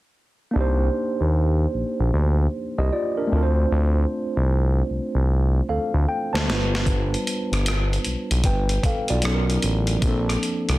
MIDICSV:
0, 0, Header, 1, 4, 480
1, 0, Start_track
1, 0, Tempo, 789474
1, 333, Time_signature, 4, 2, 24, 8
1, 6557, End_track
2, 0, Start_track
2, 0, Title_t, "Tine electric piano"
2, 0, Program_c, 0, 4
2, 311, Note_on_c, 0, 58, 59
2, 325, Note_on_c, 0, 62, 53
2, 338, Note_on_c, 0, 63, 52
2, 352, Note_on_c, 0, 67, 52
2, 368, Note_on_c, 0, 72, 64
2, 437, Control_c, 0, 64, 127
2, 1270, Note_off_c, 0, 62, 0
2, 1276, Note_off_c, 0, 63, 0
2, 1283, Note_off_c, 0, 67, 0
2, 1291, Note_off_c, 0, 72, 0
2, 1692, Note_on_c, 0, 75, 55
2, 1696, Note_on_c, 0, 67, 45
2, 1772, Note_off_c, 0, 75, 0
2, 1774, Note_off_c, 0, 67, 0
2, 1778, Note_on_c, 0, 74, 55
2, 1781, Note_on_c, 0, 65, 47
2, 1921, Note_off_c, 0, 74, 0
2, 1922, Note_off_c, 0, 65, 0
2, 1930, Note_on_c, 0, 70, 51
2, 1935, Note_on_c, 0, 62, 44
2, 1977, Note_off_c, 0, 58, 0
2, 1989, Note_on_c, 0, 57, 57
2, 2003, Note_on_c, 0, 60, 52
2, 2010, Note_off_c, 0, 62, 0
2, 2017, Note_on_c, 0, 62, 47
2, 2021, Control_c, 0, 64, 0
2, 2033, Note_on_c, 0, 65, 46
2, 2039, Note_off_c, 0, 70, 0
2, 2046, Note_on_c, 0, 70, 51
2, 2080, Note_off_c, 0, 70, 0
2, 2084, Note_on_c, 0, 72, 61
2, 2133, Control_c, 0, 64, 127
2, 3416, Note_off_c, 0, 57, 0
2, 3423, Note_off_c, 0, 60, 0
2, 3430, Note_off_c, 0, 62, 0
2, 3438, Note_off_c, 0, 65, 0
2, 3461, Note_on_c, 0, 77, 54
2, 3464, Note_off_c, 0, 72, 0
2, 3465, Note_on_c, 0, 69, 46
2, 3685, Note_off_c, 0, 77, 0
2, 3687, Note_off_c, 0, 69, 0
2, 3700, Note_on_c, 0, 79, 52
2, 3842, Note_off_c, 0, 79, 0
2, 3848, Note_on_c, 0, 81, 49
2, 3853, Note_on_c, 0, 72, 43
2, 3911, Note_on_c, 0, 55, 54
2, 3925, Note_on_c, 0, 59, 49
2, 3939, Control_c, 0, 64, 0
2, 3939, Note_on_c, 0, 62, 51
2, 3954, Note_on_c, 0, 65, 51
2, 3967, Note_on_c, 0, 71, 61
2, 4058, Control_c, 0, 64, 127
2, 4075, Note_off_c, 0, 81, 0
2, 4077, Note_off_c, 0, 72, 0
2, 5120, Note_off_c, 0, 65, 0
2, 5126, Note_off_c, 0, 71, 0
2, 5142, Note_on_c, 0, 79, 52
2, 5143, Note_on_c, 0, 71, 44
2, 5365, Note_off_c, 0, 79, 0
2, 5366, Note_off_c, 0, 71, 0
2, 5384, Note_on_c, 0, 77, 61
2, 5387, Note_on_c, 0, 69, 47
2, 5524, Note_off_c, 0, 77, 0
2, 5526, Note_off_c, 0, 69, 0
2, 5533, Note_on_c, 0, 74, 49
2, 5537, Note_on_c, 0, 65, 46
2, 5578, Note_off_c, 0, 55, 0
2, 5585, Note_off_c, 0, 59, 0
2, 5591, Note_off_c, 0, 62, 0
2, 5610, Note_on_c, 0, 54, 62
2, 5617, Note_on_c, 0, 59, 55
2, 5621, Control_c, 0, 64, 0
2, 5623, Note_on_c, 0, 61, 57
2, 5630, Note_on_c, 0, 63, 57
2, 5638, Note_on_c, 0, 69, 57
2, 5676, Note_off_c, 0, 69, 0
2, 5678, Note_on_c, 0, 70, 64
2, 5720, Control_c, 0, 64, 127
2, 5757, Note_off_c, 0, 74, 0
2, 5760, Note_off_c, 0, 65, 0
2, 6074, Note_on_c, 0, 53, 60
2, 6088, Note_on_c, 0, 58, 55
2, 6091, Note_off_c, 0, 54, 0
2, 6095, Note_off_c, 0, 59, 0
2, 6098, Note_off_c, 0, 61, 0
2, 6101, Note_off_c, 0, 63, 0
2, 6101, Control_c, 0, 64, 0
2, 6102, Note_on_c, 0, 60, 55
2, 6116, Note_on_c, 0, 62, 58
2, 6125, Note_off_c, 0, 70, 0
2, 6129, Note_on_c, 0, 69, 67
2, 6203, Control_c, 0, 64, 127
2, 6557, Note_off_c, 0, 53, 0
2, 6557, Note_off_c, 0, 58, 0
2, 6557, Note_off_c, 0, 60, 0
2, 6557, Note_off_c, 0, 62, 0
2, 6557, Note_off_c, 0, 69, 0
2, 6557, End_track
3, 0, Start_track
3, 0, Title_t, "Analog synth bass"
3, 0, Program_c, 1, 38
3, 338, Note_on_c, 1, 36, 85
3, 543, Note_off_c, 1, 36, 0
3, 733, Note_on_c, 1, 39, 72
3, 1012, Note_off_c, 1, 39, 0
3, 1059, Note_on_c, 1, 34, 41
3, 1119, Note_off_c, 1, 34, 0
3, 1212, Note_on_c, 1, 34, 71
3, 1285, Note_off_c, 1, 34, 0
3, 1299, Note_on_c, 1, 38, 90
3, 1504, Note_off_c, 1, 38, 0
3, 1692, Note_on_c, 1, 36, 74
3, 1764, Note_off_c, 1, 36, 0
3, 2019, Note_on_c, 1, 38, 83
3, 2223, Note_off_c, 1, 38, 0
3, 2258, Note_on_c, 1, 38, 98
3, 2463, Note_off_c, 1, 38, 0
3, 2654, Note_on_c, 1, 36, 87
3, 2933, Note_off_c, 1, 36, 0
3, 2980, Note_on_c, 1, 36, 46
3, 3039, Note_off_c, 1, 36, 0
3, 3130, Note_on_c, 1, 36, 76
3, 3410, Note_off_c, 1, 36, 0
3, 3458, Note_on_c, 1, 38, 40
3, 3518, Note_off_c, 1, 38, 0
3, 3610, Note_on_c, 1, 38, 83
3, 3683, Note_off_c, 1, 38, 0
3, 3850, Note_on_c, 1, 38, 77
3, 3938, Note_on_c, 1, 31, 86
3, 3947, Note_off_c, 1, 38, 0
3, 4350, Note_off_c, 1, 31, 0
3, 4570, Note_on_c, 1, 31, 93
3, 4851, Note_off_c, 1, 31, 0
3, 4900, Note_on_c, 1, 35, 43
3, 4960, Note_off_c, 1, 35, 0
3, 5051, Note_on_c, 1, 35, 79
3, 5124, Note_off_c, 1, 35, 0
3, 5133, Note_on_c, 1, 31, 88
3, 5340, Note_off_c, 1, 31, 0
3, 5533, Note_on_c, 1, 35, 76
3, 5605, Note_off_c, 1, 35, 0
3, 5618, Note_on_c, 1, 35, 85
3, 5823, Note_off_c, 1, 35, 0
3, 5859, Note_on_c, 1, 33, 80
3, 6063, Note_off_c, 1, 33, 0
3, 6097, Note_on_c, 1, 34, 98
3, 6302, Note_off_c, 1, 34, 0
3, 6496, Note_on_c, 1, 36, 85
3, 6557, Note_off_c, 1, 36, 0
3, 6557, End_track
4, 0, Start_track
4, 0, Title_t, "Drums"
4, 3863, Note_on_c, 9, 38, 64
4, 3924, Note_off_c, 9, 38, 0
4, 3950, Note_on_c, 9, 38, 77
4, 4011, Note_off_c, 9, 38, 0
4, 4104, Note_on_c, 9, 38, 68
4, 4165, Note_off_c, 9, 38, 0
4, 4172, Note_on_c, 9, 36, 89
4, 4174, Note_on_c, 9, 42, 73
4, 4233, Note_off_c, 9, 36, 0
4, 4234, Note_off_c, 9, 42, 0
4, 4342, Note_on_c, 9, 42, 40
4, 4402, Note_off_c, 9, 42, 0
4, 4421, Note_on_c, 9, 42, 53
4, 4482, Note_off_c, 9, 42, 0
4, 4578, Note_on_c, 9, 42, 44
4, 4583, Note_on_c, 9, 37, 30
4, 4639, Note_off_c, 9, 42, 0
4, 4644, Note_off_c, 9, 37, 0
4, 4658, Note_on_c, 9, 42, 76
4, 4672, Note_on_c, 9, 37, 82
4, 4718, Note_off_c, 9, 42, 0
4, 4732, Note_off_c, 9, 37, 0
4, 4822, Note_on_c, 9, 42, 37
4, 4882, Note_off_c, 9, 42, 0
4, 4891, Note_on_c, 9, 42, 55
4, 4952, Note_off_c, 9, 42, 0
4, 5052, Note_on_c, 9, 42, 46
4, 5113, Note_off_c, 9, 42, 0
4, 5129, Note_on_c, 9, 42, 66
4, 5130, Note_on_c, 9, 36, 66
4, 5190, Note_off_c, 9, 42, 0
4, 5191, Note_off_c, 9, 36, 0
4, 5285, Note_on_c, 9, 42, 35
4, 5346, Note_off_c, 9, 42, 0
4, 5371, Note_on_c, 9, 36, 72
4, 5372, Note_on_c, 9, 42, 57
4, 5431, Note_off_c, 9, 36, 0
4, 5433, Note_off_c, 9, 42, 0
4, 5521, Note_on_c, 9, 42, 45
4, 5582, Note_off_c, 9, 42, 0
4, 5605, Note_on_c, 9, 42, 65
4, 5625, Note_on_c, 9, 37, 94
4, 5666, Note_off_c, 9, 42, 0
4, 5686, Note_off_c, 9, 37, 0
4, 5774, Note_on_c, 9, 42, 40
4, 5835, Note_off_c, 9, 42, 0
4, 5852, Note_on_c, 9, 42, 53
4, 5913, Note_off_c, 9, 42, 0
4, 6001, Note_on_c, 9, 42, 40
4, 6062, Note_off_c, 9, 42, 0
4, 6092, Note_on_c, 9, 36, 93
4, 6092, Note_on_c, 9, 42, 71
4, 6153, Note_off_c, 9, 36, 0
4, 6153, Note_off_c, 9, 42, 0
4, 6259, Note_on_c, 9, 37, 27
4, 6261, Note_on_c, 9, 42, 42
4, 6319, Note_off_c, 9, 37, 0
4, 6322, Note_off_c, 9, 42, 0
4, 6341, Note_on_c, 9, 42, 52
4, 6402, Note_off_c, 9, 42, 0
4, 6497, Note_on_c, 9, 42, 39
4, 6503, Note_on_c, 9, 37, 33
4, 6557, Note_off_c, 9, 37, 0
4, 6557, Note_off_c, 9, 42, 0
4, 6557, End_track
0, 0, End_of_file